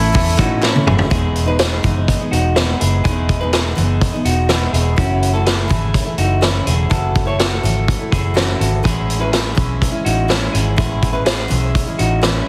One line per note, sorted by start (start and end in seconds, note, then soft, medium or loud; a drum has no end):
0.00 0.11 A1 medium
0.00 0.15 A2 medium
0.00 0.11 E3 medium
0.00 1.08 E3 medium
0.00 0.12 A3 medium
0.00 1.10 A3 medium
0.00 0.13 C#4 medium
0.00 1.08 C#4 medium
0.00 0.14 E4 medium
0.00 0.36 E4 medium
0.00 0.59 E4 medium
0.00 0.35 A4 medium
0.12 0.36 E2 medium
0.12 0.36 E3 medium
0.12 0.37 A3 medium
0.12 0.38 C#4 medium
0.12 0.39 E4 medium
0.12 kick medium
0.12 hi-hat pedal medium
0.12 open hi-hat loud
0.37 0.80 A2 medium
0.37 0.74 E3 medium
0.37 0.75 A3 medium
0.37 0.74 C#4 medium
0.37 0.63 D#4 medium
0.37 0.73 E4 medium
0.37 0.63 F#4 medium
0.37 kick medium
0.37 clap medium
0.37 hi-hat pedal medium
0.37 open hi-hat medium
0.63 0.88 C#4 medium
0.63 0.86 E4 medium
0.63 snare medium
0.63 clap medium
0.74 1.10 A3 soft
0.74 1.11 C#4 medium
0.74 1.11 E4 medium
0.74 high tom medium
0.86 1.07 F#1 medium
0.86 1.10 E4 medium
0.86 1.10 G#4 medium
0.86 mid tom medium
0.99 floor tom medium
1.10 1.80 E1 medium
1.10 1.47 E3 medium
1.10 1.47 G#3 medium
1.10 1.46 B3 medium
1.10 1.44 D#4 medium
1.10 1.45 E4 medium
1.10 1.45 G#4 medium
1.10 kick medium
1.10 closed hi-hat medium
1.36 closed hi-hat medium
1.46 1.83 G#3 soft
1.46 1.83 B3 soft
1.46 1.83 D#4 medium
1.46 1.58 G#4 soft
1.46 1.60 B4 medium
1.59 2.28 E4 soft
1.59 2.28 G#4 medium
1.59 snare loud
1.59 closed hi-hat medium
1.83 2.15 F#1 medium
1.83 2.20 E3 medium
1.83 2.20 G#3 medium
1.83 2.20 B3 medium
1.83 2.19 D#4 medium
1.83 kick medium
1.83 closed hi-hat medium
2.08 kick medium
2.08 closed hi-hat medium
2.20 2.56 G#3 soft
2.20 2.57 B3 soft
2.20 2.56 D#4 medium
2.31 2.73 E1 medium
2.31 2.56 D#4 soft
2.31 2.56 F#4 medium
2.31 closed hi-hat medium
2.56 3.04 E3 medium
2.56 3.04 G#3 medium
2.56 2.79 B3 medium
2.56 3.04 B3 medium
2.56 3.05 D#4 medium
2.56 2.80 E4 medium
2.56 snare medium
2.56 closed hi-hat medium
2.80 3.01 F#1 medium
2.80 3.04 E4 medium
2.80 3.03 G#4 medium
2.80 closed hi-hat medium
3.04 3.74 E1 medium
3.04 3.41 E3 medium
3.04 3.41 G#3 medium
3.04 3.41 B3 medium
3.04 3.40 D#4 medium
3.04 3.39 E4 medium
3.04 3.38 G#4 medium
3.04 kick medium
3.04 closed hi-hat medium
3.29 kick medium
3.29 closed hi-hat medium
3.41 3.76 G#3 soft
3.41 3.77 B3 soft
3.41 3.77 D#4 medium
3.41 3.52 G#4 medium
3.41 3.53 B4 medium
3.53 4.22 E4 medium
3.53 4.21 G#4 medium
3.53 snare medium
3.53 closed hi-hat medium
3.75 4.08 F#1 medium
3.75 4.13 E3 medium
3.75 4.13 G#3 medium
3.75 4.13 B3 medium
3.75 4.11 D#4 medium
3.75 closed hi-hat medium
4.01 kick medium
4.01 closed hi-hat medium
4.12 4.48 G#3 soft
4.12 4.49 B3 soft
4.12 4.49 D#4 medium
4.25 4.66 E1 medium
4.25 4.50 D#4 soft
4.25 4.50 F#4 medium
4.25 closed hi-hat medium
4.49 4.96 E3 medium
4.49 4.97 G#3 medium
4.49 4.98 B3 medium
4.49 4.73 B3 medium
4.49 4.98 D#4 medium
4.49 4.73 E4 medium
4.49 snare medium
4.49 closed hi-hat medium
4.73 4.94 E1 medium
4.73 4.98 E4 medium
4.73 4.97 G#4 medium
4.73 closed hi-hat medium
4.96 5.67 F#1 loud
4.96 5.33 C#3 medium
4.96 5.34 E3 medium
4.96 5.34 A3 medium
4.96 5.32 C#4 medium
4.96 5.32 E4 medium
4.96 5.32 F#4 medium
4.96 kick medium
4.96 closed hi-hat medium
5.23 closed hi-hat medium
5.34 5.68 E3 soft
5.34 5.68 A3 medium
5.34 5.69 E4 medium
5.34 5.45 F#4 medium
5.34 5.46 A4 medium
5.46 6.15 E4 soft
5.46 6.15 G#4 medium
5.46 snare loud
5.46 closed hi-hat medium
5.68 6.01 G#1 medium
5.68 6.05 C#3 medium
5.68 6.05 E3 medium
5.68 6.05 A3 medium
5.68 6.03 E4 medium
5.68 kick medium
5.68 closed hi-hat medium
5.94 kick medium
5.94 closed hi-hat medium
6.04 6.41 E3 soft
6.04 6.42 A3 soft
6.04 6.42 E4 medium
6.18 6.59 F#1 medium
6.18 6.43 D#4 soft
6.18 6.43 F#4 medium
6.18 closed hi-hat medium
6.41 6.88 C#3 medium
6.41 6.90 E3 medium
6.41 6.91 A3 medium
6.41 6.67 C#4 medium
6.41 6.66 E4 medium
6.41 6.91 E4 medium
6.41 snare medium
6.41 closed hi-hat medium
6.67 6.87 E1 medium
6.67 6.90 E4 medium
6.67 6.91 G#4 medium
6.67 closed hi-hat medium
6.90 7.60 F#1 medium
6.90 7.27 C#3 medium
6.90 7.27 E3 medium
6.90 7.26 A3 medium
6.90 7.24 E4 medium
6.90 7.25 F#4 medium
6.90 7.25 A4 medium
6.90 kick medium
6.90 closed hi-hat medium
7.15 kick medium
7.15 closed hi-hat medium
7.25 7.63 E3 soft
7.25 7.64 A3 soft
7.25 7.63 E4 medium
7.25 7.37 A4 medium
7.25 7.39 C#5 medium
7.39 8.08 F#4 soft
7.39 8.08 A4 medium
7.39 snare loud
7.39 closed hi-hat medium
7.63 7.94 G#1 medium
7.63 8.00 C#3 medium
7.63 8.00 E3 medium
7.63 7.99 A3 medium
7.63 7.98 E4 medium
7.63 closed hi-hat medium
7.88 kick medium
7.88 closed hi-hat medium
7.99 8.34 E3 soft
7.99 8.34 A3 soft
7.99 8.35 E4 medium
8.12 8.53 F#1 medium
8.12 8.36 E4 medium
8.12 8.36 G#4 medium
8.12 kick medium
8.12 closed hi-hat medium
8.34 8.82 C#3 medium
8.34 8.83 E3 medium
8.34 8.84 A3 medium
8.34 8.61 C#4 medium
8.34 8.85 E4 medium
8.34 8.59 F#4 medium
8.34 snare medium
8.34 closed hi-hat medium
8.59 8.81 G#1 medium
8.59 8.84 F#4 medium
8.59 8.84 A4 medium
8.59 closed hi-hat medium
8.83 9.54 A1 medium
8.83 9.20 E3 medium
8.83 9.20 G#3 medium
8.83 9.19 C#4 medium
8.83 9.19 E4 medium
8.83 9.18 E4 medium
8.83 9.18 G#4 medium
8.83 kick medium
8.83 closed hi-hat medium
9.10 closed hi-hat medium
9.19 9.54 G#3 soft
9.19 9.56 C#4 medium
9.19 9.56 E4 medium
9.19 9.31 G#4 medium
9.19 9.33 B4 medium
9.32 10.02 E4 soft
9.32 10.01 G#4 medium
9.32 snare loud
9.32 closed hi-hat medium
9.55 9.88 B1 medium
9.55 9.92 E3 medium
9.55 9.93 G#3 medium
9.55 9.91 C#4 medium
9.55 9.90 E4 medium
9.55 kick medium
9.55 closed hi-hat medium
9.82 kick medium
9.82 closed hi-hat medium
9.92 10.28 G#3 soft
9.92 10.29 C#4 medium
9.92 10.29 E4 medium
10.05 10.47 A1 medium
10.05 10.29 D#4 medium
10.05 10.29 F#4 medium
10.05 closed hi-hat medium
10.28 10.76 E3 medium
10.28 10.77 G#3 medium
10.28 10.78 C#4 medium
10.28 10.54 C#4 medium
10.28 10.52 E4 medium
10.28 10.79 E4 medium
10.28 snare medium
10.28 closed hi-hat medium
10.53 10.75 G#1 medium
10.53 10.77 E4 medium
10.53 10.76 G#4 medium
10.53 closed hi-hat medium
10.76 11.47 A1 medium
10.76 11.14 E3 medium
10.76 11.14 G#3 medium
10.76 11.12 C#4 medium
10.76 11.12 E4 medium
10.76 11.11 E4 medium
10.76 11.12 G#4 medium
10.76 kick medium
10.76 closed hi-hat medium
11.02 kick medium
11.02 closed hi-hat medium
11.13 11.48 G#3 soft
11.13 11.49 C#4 soft
11.13 11.50 E4 medium
11.13 11.24 G#4 medium
11.13 11.26 B4 medium
11.25 11.95 E4 medium
11.25 11.95 G#4 medium
11.25 snare loud
11.25 closed hi-hat medium
11.48 11.82 B1 medium
11.48 11.86 E3 medium
11.48 11.86 G#3 medium
11.48 11.86 C#4 medium
11.48 11.85 E4 medium
11.48 closed hi-hat medium
11.75 kick medium
11.75 closed hi-hat medium
11.86 12.22 G#3 medium
11.86 12.22 C#4 soft
11.86 12.23 E4 medium
11.99 12.41 A1 medium
11.99 12.24 D#4 medium
11.99 12.23 F#4 medium
11.99 closed hi-hat medium
12.22 12.48 E3 medium
12.22 12.48 G#3 medium
12.22 12.48 C#4 medium
12.22 12.47 E4 medium
12.22 12.48 E4 medium
12.22 snare medium
12.22 closed hi-hat medium